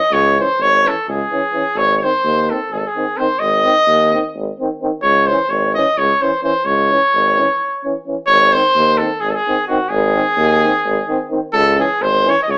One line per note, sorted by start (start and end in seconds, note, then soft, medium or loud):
0.00 0.14 D#5 loud
0.11 0.37 C#2 loud
0.11 0.37 C#5 loud
0.37 0.46 E3 medium
0.37 0.46 C#4 medium
0.37 0.63 C5 loud
0.59 0.85 G#1 medium
0.59 0.89 C#5 loud
0.83 0.94 E3 medium
0.83 0.93 C#4 soft
0.88 1.09 A4 medium
1.08 1.21 C#2 loud
1.08 1.79 G#4 medium
1.31 1.40 E3 medium
1.31 1.41 C#4 medium
1.53 1.62 E3 medium
1.53 1.63 C#4 medium
1.75 2.01 G#1 loud
1.75 1.96 C#5 loud
1.96 2.05 C#5 medium
2.02 2.11 D#3 medium
2.02 2.11 C4 medium
2.02 2.51 C5 medium
2.24 2.50 D#2 medium
2.49 2.58 D#3 medium
2.49 2.60 C4 medium
2.49 2.74 A4 medium
2.70 2.84 G#1 medium
2.70 2.79 G#4 medium
2.77 2.89 A4 medium
2.87 3.19 G#4 medium
2.96 3.04 D#3 medium
2.96 3.05 C4 medium
3.17 3.28 D#3 medium
3.17 3.26 C4 medium
3.17 3.41 C5 medium
3.39 3.66 G#1 medium
3.39 4.34 D#5 loud
3.64 3.74 D#3 medium
3.64 3.73 C4 medium
3.87 4.13 D#2 loud
4.12 4.22 D#3 medium
4.12 4.21 C4 medium
4.35 4.48 G#1 loud
4.59 4.69 D#3 medium
4.59 4.68 C4 medium
4.81 4.91 D#3 medium
4.81 4.89 C4 medium
5.02 5.29 C#2 loud
5.02 5.28 C#5 loud
5.26 5.38 E3 medium
5.26 5.37 C#4 medium
5.26 5.51 C5 medium
5.50 5.76 G#1 loud
5.50 5.74 C#5 medium
5.74 5.84 E3 medium
5.74 5.85 C#4 medium
5.74 5.99 D#5 medium
5.97 6.11 C#2 loud
5.97 6.23 C#5 loud
6.21 6.31 E3 medium
6.21 6.30 C#4 medium
6.21 6.43 C5 medium
6.42 6.52 E3 medium
6.42 6.51 C#4 medium
6.42 6.66 C5 medium
6.65 6.91 C#2 medium
6.65 8.06 C#5 loud
6.89 6.98 E3 soft
6.89 7.00 C#4 medium
7.13 7.39 G#1 medium
7.38 7.46 E3 medium
7.38 7.47 C#4 medium
7.84 7.94 E3 soft
7.84 7.92 C#4 medium
8.06 8.16 E3 medium
8.06 8.15 C#4 medium
8.27 8.54 G#1 loud
8.27 8.54 C#5 loud
8.53 8.63 D#3 medium
8.53 8.63 C4 medium
8.53 8.99 C5 loud
8.75 9.01 D#2 loud
8.97 9.09 D#3 medium
8.97 9.10 C4 medium
8.97 9.22 A4 medium
9.20 9.35 G#1 medium
9.20 9.31 G#4 medium
9.29 9.36 A4 medium
9.35 9.67 G#4 loud
9.47 9.56 D#3 medium
9.47 9.57 C4 medium
9.67 9.78 D#3 medium
9.67 9.79 C4 medium
9.67 9.91 F#4 medium
9.89 10.16 G#1 loud
9.89 11.30 G#4 loud
10.15 10.24 D#3 medium
10.15 10.25 C4 medium
10.37 10.63 D#2 loud
10.63 10.72 D#3 medium
10.63 10.73 C4 medium
10.85 10.98 G#1 loud
11.08 11.17 D#3 medium
11.08 11.19 C4 medium
11.30 11.39 D#3 medium
11.30 11.39 C4 medium
11.53 11.79 C#2 loud
11.53 11.76 A4 loud
11.77 11.86 E3 medium
11.77 11.86 C#4 medium
11.77 12.04 G#4 medium
12.00 12.26 G#1 loud
12.00 12.31 C5 loud
12.25 12.33 E3 medium
12.25 12.34 C#4 medium
12.29 12.42 C#5 medium
12.43 12.52 D#5 medium
12.48 12.58 C#2 medium
12.48 12.58 C#5 loud